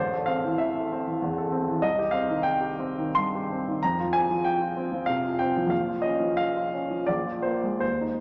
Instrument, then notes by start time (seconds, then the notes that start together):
grand piano
Already playing: A1 C5
0.14 A4
0.26 C4 F5
0.44 E3
0.58 E5
0.75 A4
0.92 C4
1.07 E3
1.22 E2
1.38 A4
1.52 C4
1.68 E3
1.82 C2 D#5
1.99 G4
2.11 C4 F5
2.29 D#3
2.43 G5
2.61 G4
2.79 C4
2.99 D#3
3.15 G2 C6
3.35 G4
3.52 C4
3.68 D#3
3.83 F2 A#5
4.00 F4
4.13 C4 G#5
4.30 F3
4.45 G5
4.62 F4
4.77 C4
4.92 F3
5.06 C3 F5
5.24 F4
5.39 C4 G5
5.57 F3
5.67 A#1 F5
5.88 F4
6.02 C#4 D#5
6.20 F3
6.37 F5
6.56 F4
6.74 C#4
6.90 F3
7.06 A#1 D5
7.26 F4
7.42 A#3 C5
7.63 G#3
7.79 D#2 C5
8.01 D#4